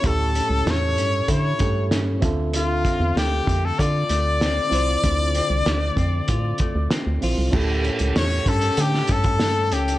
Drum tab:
CC |----------------|----------------|----------------|x---------------|
HH |x-x-x-x-x-x-x-x-|x-x-x-x-x-x-x-x-|x-x-x-x-x-x-x-o-|--xxxxxxx-xxx-xx|
SD |----o-------o---|----o-------o---|----o-------o---|----o----o--o---|
BD |o-------o-o---o-|--o---o-o-------|o-----o-o-o-----|o-----o---oo----|